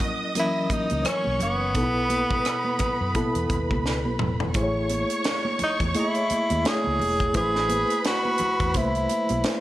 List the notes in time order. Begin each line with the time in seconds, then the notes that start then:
Already playing: F#3 C#4 E4 A#4 D#5 D#6
0.00 kick
0.35 E3 F#3 C#4 A#4, closed hi-hat, high conga
0.40 E4
0.70 D#4, muted fingered electric bass stroke, kick, closed hi-hat, muted conga, high conga
0.90 C#2, closed hi-hat, high conga
1.05 C#4 C#5 C#6, cross-stick, closed hi-hat
1.24 B1, high conga
1.40 F#1 B3, closed hi-hat, low conga
1.74 B1 B2 B3 D#4 A4 B4 B5, kick, closed hi-hat, low conga
1.83 E4
2.10 closed hi-hat, high conga
2.31 kick
2.44 cross-stick, closed hi-hat, muted conga
2.65 high conga
2.79 muted fingered electric bass stroke, kick, closed hi-hat, low conga
3.01 F#2
3.15 B2 B3 E4 A4, kick, closed hi-hat, muted conga, high conga
3.35 E2, closed hi-hat
3.50 D#2, kick, closed hi-hat, muted conga
3.71 C#2, kick, high conga
3.86 snare
4.05 B1, high conga
4.19 E1, mid tom, low conga
4.40 floor tom
4.54 A1 A3 E4 G#4 C5 C#5 C#6, kick, closed hi-hat, low conga
4.63 C#5
4.89 closed hi-hat, high conga
5.10 closed hi-hat
5.24 snare, closed hi-hat, muted conga
5.45 high conga
5.59 muted fingered electric bass stroke, closed hi-hat, muted conga, low conga
5.64 D#4
5.80 E2, kick, closed hi-hat
5.94 A3 E4 G#4 D#5, closed hi-hat, muted conga, high conga
6.00 E4
6.15 closed hi-hat
6.30 muted fingered electric bass stroke, closed hi-hat, muted conga, high conga
6.50 D#2, closed hi-hat, high conga
6.64 A3 E4 G#4 C#5, snare, closed hi-hat, muted conga
6.68 G#4
6.84 C#2, high conga
6.99 E1, open hi-hat, low conga
7.20 kick, closed hi-hat
7.34 A1 A3 E4 G#4 B4 C5 B5, kick, closed hi-hat, low conga
7.56 snare
7.69 closed hi-hat, muted conga, high conga
7.90 closed hi-hat
8.04 F#4, snare, closed hi-hat
8.25 high conga
8.38 muted fingered electric bass stroke, closed hi-hat, muted conga, low conga
8.60 E2, kick, closed hi-hat
8.74 C2 A3 E4 B4 C5, kick, closed hi-hat, muted conga, high conga
8.95 closed hi-hat
9.09 closed hi-hat, high conga
9.29 B1, closed hi-hat, high conga
9.44 A3 E4 B4 C5, snare, closed hi-hat
9.56 C4 C5